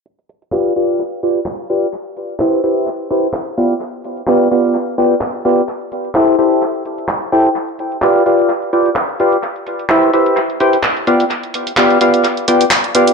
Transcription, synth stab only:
X:1
M:4/4
L:1/8
Q:"Swing 16ths" 1/4=128
K:Gmix
V:1 name="Synth stab"
z2 [FGBdf] [FGBdf] z [FGBdg] z [FGBdf] | z2 [EGBce] [EGBce] z [EGBcg] z [B,FGBdf] | z2 [B,FGBdf] [B,FGBdf] z [B,FGBdg] z [B,FGBdf] | z2 [EGAce] [EGAce] z3 [EGAcg] |
z2 [FGBdf] [FGBdf] z [FGBdg] z [FGBdf] | z2 [EGBce] [EGBce] z [EGBcg] z [B,FGBdf] | z2 [B,FGBdf] [B,FGBdf] z [B,FGBdg] z [B,FGBdf] |]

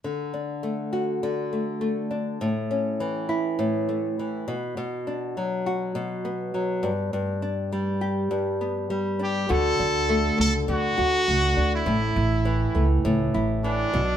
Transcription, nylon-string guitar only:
X:1
M:4/4
L:1/8
Q:"Swing 16ths" 1/4=102
K:D
V:1 name="Nylon-string guitar"
D, D A, F D, A, A, D | A,, C E, E A,, A, E, B,, | B,, D F, F B,, B, F, G,, | G,, D G, G G,, B, G, D |
[D,F] D A, A, D, F A, D | [A,,E]2 E, A, A,, E E, B,, |]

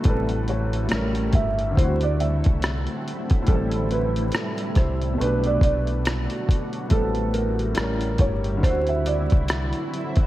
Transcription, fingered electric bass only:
X:1
M:4/4
L:1/16
Q:"Swing 16ths" 1/4=70
K:Ador
V:1 name="Fingered electric bass" clef=bass
A,,,4 A,,,2 G,,,2 D,,3 C,,2 z3 | A,,,4 z2 C,,2 B,,,2 B,,,3 z3 | A,,,4 z2 G,,,2 D,,3 C,,2 z3 |]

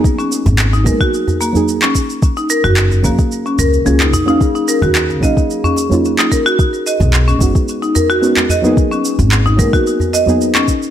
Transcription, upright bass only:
X:1
M:4/4
L:1/16
Q:1/4=110
K:Abdor
V:1 name="Upright bass" clef=bass
z3 A,,,3 A,, z8 z | z3 G,,,3 G,, z3 D,, z D,,2 B,,, z | z3 E,,3 B,,, z8 z | z3 =B,,,3 ^F,,, z8 z |
z3 A,,,3 A,, z8 z |]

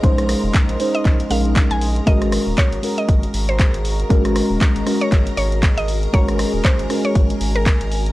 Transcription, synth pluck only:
X:1
M:4/4
L:1/16
Q:"Swing 16ths" 1/4=118
K:Abmix
V:1 name="Synth pluck"
z6 z e3 f3 a3 | e3 z d3 e3 z c3 z2 | z6 z d3 d3 e3 | d3 z c3 d3 z B3 z2 |]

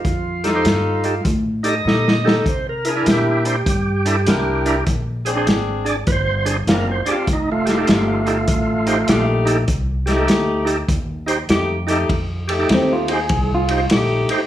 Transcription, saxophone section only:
X:1
M:4/4
L:1/8
Q:"Swing" 1/4=100
K:Fmix
V:1 name="Saxophone section"
z [EGA]2 z3 [EGA] [EGA] | z [D=EB]2 z3 [DEB]2 | z [CD_A]2 z3 [CDF] [CDG] | z [A,EG]2 z3 [A,EG]2 |
z [A,EG]2 z3 [A,EG] [A,EG] | z [A,EG]2 z3 [A,EG]2 |]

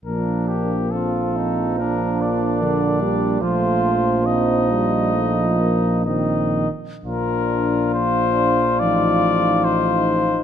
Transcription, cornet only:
X:1
M:4/4
L:1/8
Q:1/4=70
K:Bb
V:1 name="Cornet"
B G A2 B d3 | c2 e4 e z | B2 c2 d2 c2 |]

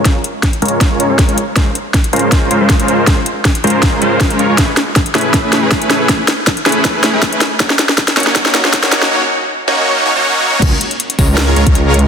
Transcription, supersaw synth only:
X:1
M:4/4
L:1/16
Q:"Swing 16ths" 1/4=159
K:Db
V:1 name="Supersaw synth"
z6 [A,DFBd]4 [A,DFBd] [A,DFBd]3 z2 | [A,DFBc] z4 z [A,DFBc]4 [A,DFBc] [A,DFBc]4- [A,DFBc] | D z4 z [A,DFBc]4 [A,DFBc]4 [A,DFBd] [A,DFBd] | z6 [=A,^C=E^G=B]4 [A,CEGB] [A,CEGB]4- [A,CEGB] |
z6 [=A,^C=E^G=B]4 [A,CEGB] [A,CEGB]3 z2 | [B,DEGd] z4 z [B,DEGd]4 [B,DEGd] [B,DEGd]4- [B,DEGd] | [B,DEGd] z4 z [B,DEGd]4 [B,DEGd] [B,DEGd]4- [B,DEGd] | [A,DFB] z4 z [A,DFBd]4 [A,DFBd] z4 z |]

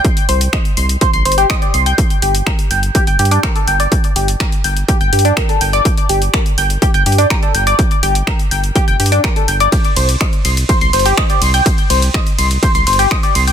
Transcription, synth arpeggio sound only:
X:1
M:4/4
L:1/16
Q:1/4=124
K:Gm
V:1 name="Synth arpeggio sound"
z2 c z e z c' z c c' c G e d c' g | z2 G z B z g z G g G D B A g d | z2 G z B z g z G g G D B A g d | z2 G z B z g z G g G D B A g d |
z2 G z B z g z G g G D B A g d | z2 c z e z c' z c c' c G e d c' g | z2 c z e z c' z c c' c G e d c' g |]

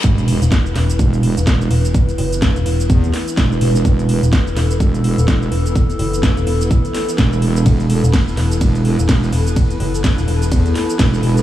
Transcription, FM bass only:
X:1
M:4/4
L:1/16
Q:"Swing 16ths" 1/4=126
K:Clyd
V:1 name="FM bass" clef=bass
z3 E,,,3 E,,,2 z3 E,,, z2 E,,,2- | E,,,2 F,,,3 E,,, E,,,2 z8 | z3 E,,,3 E,,,2 z3 E,,, z2 E,,,2- | E,,,2 F,,,3 E,,, E,,,2 z8 |
z3 E,,,3 E,,,2 z3 E,,, z2 E,,,2- | E,,,2 F,,,3 E,,, E,,,2 z8 |]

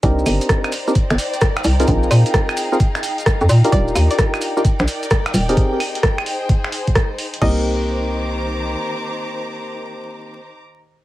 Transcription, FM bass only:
X:1
M:4/4
L:1/16
Q:"Swing 16ths" 1/4=130
K:Cm
V:1 name="FM bass" clef=bass
C,,2 G,,, z6 G,,, z4 C,,2 | B,,,2 B,, z8 z2 F,, B,, z | E,,,2 E,, z6 B,,, z4 E,,,2 | z16 |
C,,12 z4 | z16 |]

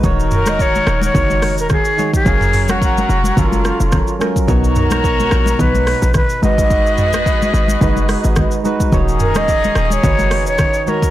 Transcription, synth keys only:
X:1
M:4/4
L:1/16
Q:"Swing 16ths" 1/4=108
K:Ebm
V:1 name="Synth keys"
[E,EGd]6- [E,EGd] z [E,EGd]6 [E,EGd]2 | [G,DABf]6- [G,DABf] z [G,DF=AB]6 [G,DFB]2 | [=B,,=B,^D^A]6- [B,,B,DA] z [B,,B,D=B]6 [_A,EGc]2- | [A,EGc]4- [A,EGc] z3 [A,EGc]6 [A,EGc]2 |
[E,EGd]6- [E,EGd] z [E,EGcd]6 [E,EGd]2 |]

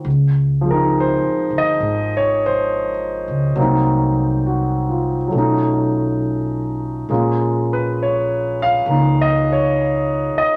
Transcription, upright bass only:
X:1
M:4/4
L:1/8
Q:"Swing" 1/4=68
K:Dbmix
V:1 name="Upright bass" clef=bass
D,,2- (3D,, E,, =D,, A,,,3 _D,, | =C,,4 =B,,,4 | B,,,4 D,,3 z |]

